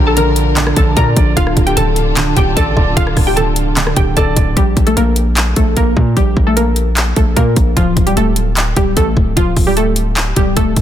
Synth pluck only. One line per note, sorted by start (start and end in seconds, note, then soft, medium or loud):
0.07 0.15 A4 medium
0.07 0.15 A5 medium
0.17 0.74 A#4 medium
0.17 0.73 A#5 medium
0.77 0.94 A4 medium
0.77 0.94 A5 medium
0.97 1.35 A#4 medium
0.97 1.34 A#5 loud
1.37 1.65 F4 medium
1.37 1.65 F5 loud
1.67 1.75 G4 medium
1.67 1.75 G5 medium
1.77 2.33 A4 medium
1.77 2.33 A5 medium
2.37 2.54 G4 medium
2.37 2.54 G5 medium
2.57 2.95 A4 medium
2.57 2.94 A5 loud
2.97 3.25 F4 medium
2.97 3.25 F5 loud
3.27 3.36 G4 medium
3.27 3.35 G5 medium
3.36 3.93 A4 medium
3.36 3.93 A5 medium
3.97 4.14 G4 medium
3.97 4.13 G5 medium
4.17 4.55 A4 medium
4.17 4.54 A5 loud
4.57 4.85 G3 medium
4.57 4.85 G4 medium
4.87 4.96 A3 medium
4.87 4.95 A4 medium
4.97 5.53 A#3 medium
4.97 5.53 A#4 medium
5.57 5.74 A3 medium
5.57 5.73 A4 medium
5.77 6.15 A#3 medium
5.77 6.14 A#4 medium
6.17 6.45 G3 medium
6.17 6.45 G4 loud
6.47 6.56 A3 medium
6.47 6.55 A4 medium
6.57 7.13 A#3 medium
6.57 7.13 A#4 medium
7.16 7.34 A3 medium
7.16 7.33 A4 medium
7.36 7.75 A#3 medium
7.36 7.74 A#4 medium
7.77 8.05 F3 medium
7.77 8.05 F4 loud
8.07 8.15 G3 medium
8.07 8.15 G4 medium
8.17 8.74 A3 medium
8.17 8.73 A4 medium
8.77 8.94 G3 medium
8.77 8.94 G4 medium
8.97 9.35 A3 medium
8.97 9.34 A4 loud
9.37 9.65 F3 medium
9.37 9.65 F4 loud
9.67 9.76 G3 medium
9.67 9.75 G4 medium
9.77 10.33 A3 medium
9.77 10.33 A4 medium
10.37 10.54 G3 medium
10.37 10.53 G4 medium
10.57 10.82 A3 medium
10.57 10.82 A4 medium